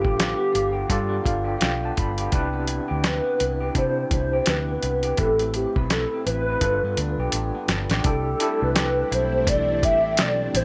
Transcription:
Already playing: G2 D3 B3 D4 F4 G4 A4 B4
0.02 A1 G4, kick
0.17 F4, snare, closed hi-hat
0.37 B3
0.52 G1 F4, closed hi-hat
0.73 G4
0.89 G2 D4 F4 A4 D5, kick, closed hi-hat
1.09 B3
1.24 G1 F4 F5, kick, closed hi-hat
1.45 G4
1.58 B1 F4, snare, closed hi-hat
1.63 G5
1.80 B3
1.85 A5
1.96 G1 F4 B5, kick, closed hi-hat
2.18 G4, closed hi-hat
2.32 C2 C3 D4 E4 G4 B4, kick, closed hi-hat
2.53 B3
2.67 E4, closed hi-hat
2.88 D2 G4
3.03 E4 B4, snare, closed hi-hat
3.24 B3
3.39 C2 E4, closed hi-hat
3.61 G4
3.75 C3 D4 E4 G4 C5, kick, closed hi-hat
4.11 C2 E4 C5, kick, closed hi-hat
4.33 G4
4.46 D2 E4 B4, snare, closed hi-hat
4.68 B3
4.83 C2 E4, closed hi-hat
5.03 G4, closed hi-hat
5.17 A1 A2 C4 E4 G4 A4 B4, kick, closed hi-hat
5.39 C4, closed hi-hat
5.54 E4 G4, closed hi-hat
5.76 B1 B4, kick
5.90 E4 A4, snare, closed hi-hat
6.14 C4
6.26 A1 E4 B4, closed hi-hat
6.50 B4
6.61 G1 G2 D4 F4 A4 B4, kick, closed hi-hat
6.83 G2 B3
6.97 D2 D4, closed hi-hat
7.18 B1 G4
7.32 A1 D4, closed hi-hat
7.55 B3
7.68 G1 D4, snare, closed hi-hat
7.89 A1 G4, snare, closed hi-hat
8.04 C2 G3 A3 C4 D4 E4 G4 A4, kick, closed hi-hat
8.08 A4
8.40 D4 E4 G4 A4, closed hi-hat
8.62 C2 B4
8.75 G4, snare, closed hi-hat
9.11 B1 E4 C5, closed hi-hat
9.47 E3 D5, kick, closed hi-hat
9.83 A1 G4 E5, kick, closed hi-hat
10.17 B1 A3, snare, closed hi-hat
10.21 D5
10.54 A1 E4 C5, closed hi-hat

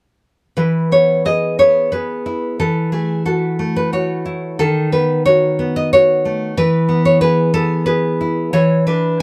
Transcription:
0.57 E3 B4
0.92 B3 C#5
1.25 G#4 D#5
1.59 B3 C#5
1.92 G#4 B4
2.26 E4
2.60 E3 A4
2.92 A3 G#4
3.25 F#4 A4
3.59 A3
3.76 B4
3.93 F#4 C#5
4.25 E4
4.59 D#3 A4
4.92 B3 B4
5.26 F#4 C#5
5.59 B3
5.76 D#5
5.93 F#4 C#5
6.25 A3
6.57 E3 B4
6.89 B3
7.05 C#5
7.21 G#4 B4
7.54 B3 A4
7.86 G#4 B4
8.21 E4
8.53 E3 C#5
8.87 D4 B4

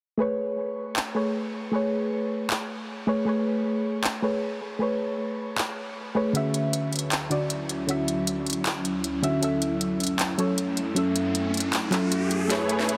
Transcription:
0.17 A3 G#4 B4
0.21 C#5
0.96 clap
1.15 A3 G#4 B4 C#5
1.71 A3 G#4 B4 C#5
2.50 clap
3.07 A3 G#4 B4 C#5
3.25 A3 G#4 B4 C#5
4.04 clap
4.22 A3 G#4 B4 C#5
4.79 A3 G#4 B4 C#5
5.58 clap
6.15 A3 G#4 B4 C#5
6.33 D2 D3 F#3 C#4 E4 F#4 E5, closed hi-hat
6.54 closed hi-hat
6.73 closed hi-hat
6.93 closed hi-hat
6.96 closed hi-hat
6.99 closed hi-hat
7.12 clap, closed hi-hat
7.30 D3 C#4 F#4 D5, closed hi-hat
7.50 closed hi-hat
7.69 closed hi-hat
7.87 D3 C#4 F#4, closed hi-hat
7.91 E5
8.08 closed hi-hat
8.27 closed hi-hat
8.46 closed hi-hat
8.50 closed hi-hat
8.53 closed hi-hat
8.66 clap, closed hi-hat
8.85 closed hi-hat
9.04 closed hi-hat
9.22 D3 C#4 F#4 E5, closed hi-hat
9.40 F#2 F#3 A3 C#4 A4 E5, closed hi-hat, riser
9.62 closed hi-hat
9.81 closed hi-hat
10.00 closed hi-hat
10.04 closed hi-hat
10.07 closed hi-hat
10.19 clap, closed hi-hat
10.38 F#3 C#4 A4 C#5, closed hi-hat
10.58 closed hi-hat
10.77 closed hi-hat
10.94 F#3 C#4 A4 E5, closed hi-hat
11.16 closed hi-hat
11.35 closed hi-hat
11.54 closed hi-hat
11.57 closed hi-hat
11.60 closed hi-hat
11.73 clap, closed hi-hat
11.90 F#3 C#4 A4, clap, closed hi-hat
11.95 E5
12.12 closed hi-hat
12.31 closed hi-hat
12.48 A2 A3 B3 C#4 E4 G#4 B4 C#5, snare, closed hi-hat, riser
12.69 closed hi-hat
12.79 snare
12.89 closed hi-hat

